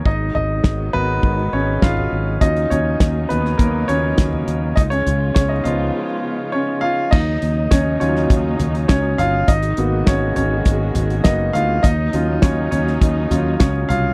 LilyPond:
<<
  \new Staff \with { instrumentName = "Grand piano" } { \time 4/4 \key ees \minor \tempo 4 = 102 << { <ees' ees''>8 <ees' ees''>4 ces''4 <des' des''>8 <f' f''>4 | <ees' ees''>8 <des' des''>4 <ces' ces''>8 <bes bes'>8 des''4. | <ees' ees''>16 <des' des''>8. <des' des''>16 <ees' ees''>16 <f' f''>4. <des' des''>8 <f' f''>8 | <ees' ees''>4 <des' des''>8 des''4 r8 <des' des''>8 <f' f''>8 |
<ees' ees''>4 <des' des''>8 <des' des''>4 r8 <ees' ees''>8 <f' f''>8 | <ees' ees''>4 <des' des''>8 <des' des''>4 r8 <des' des''>8 <f' f''>8 | } \\ { r4. <ces' ges' bes'>8 r2 | <ges des' f'>4. r4 <ges des' f'>8 r4 | r4. <f ces' ees'>8 r2 | r4. <ges des' f'>2~ <ges des' f'>8 |
r8 <bes ces' ges'>4. r4 <bes ces' ges'>8 r8 | r8 <ges des' f'>2 <ges des' f'>8 r4 | } >> }
  \new Staff \with { instrumentName = "String section" } { \clef bass \time 4/4 \key ees \minor << { <ges aes ces'>1 | <ges bes ees'>1 | <aes ces' f'>1 | <ges bes ees'>1 |
<ces aes ges'>1 | <ges bes ees'>1 | } \\ { ees1 | des1~ | des1 | des1 |
ees1 | des1 | } >> }
  \new Staff \with { instrumentName = "Fingered electric bass" } { \clef bass \time 4/4 \key ees \minor aes,,8 aes,,8 aes,,8 aes,,8 aes,,8 aes,,8 aes,,8 aes,,8 | ees,8 ees,8 ees,8 ees,8 ees,8 ees,8 ees,8 ees,8 | des,8 des,8 des,8 des,8 r2 | ees,8 ees,8 ees,8 ees,8 ees,8 ees,8 des,8 g,,8 |
aes,,8 aes,,8 aes,,8 aes,,8 aes,,8 aes,,8 ges,,8 d,8 | ees,8 ees,8 ees,8 ees,8 ees,8 ees,8 des,8 c,8 | }
  \new DrumStaff \with { instrumentName = "Drums" } \drummode { \time 4/4 bd8 tomfh8 <bd sn>8 tomfh8 bd4 <bd sn>16 tomfh8. | <hh bd>16 hh16 <hh tomfh>8 <hh bd sn>8 <hh tomfh>16 sn16 <hh bd>8 hh8 <hh bd sn>16 tomfh16 hh8 | <hh bd>16 hh16 <hh tomfh>8 <hh bd sn>8 <hh tomfh>8 r4 r4 | <cymc bd>8 hh8 <hh bd sn>8 hh16 sn16 <hh bd>8 <hh tomfh>16 hh16 <hh bd sn>8 <hh tomfh>8 |
<hh bd>16 hh16 hh8 <hh bd sn>8 <hh tomfh>8 <hh bd>8 <hh tomfh>16 hh16 <hh bd sn>8 <hh tomfh>8 | <hh bd>8 hh8 <hh bd sn>8 <hh tomfh>16 sn16 <hh bd>8 <hh tomfh>8 <hh bd sn>8 <hh tomfh>8 | }
>>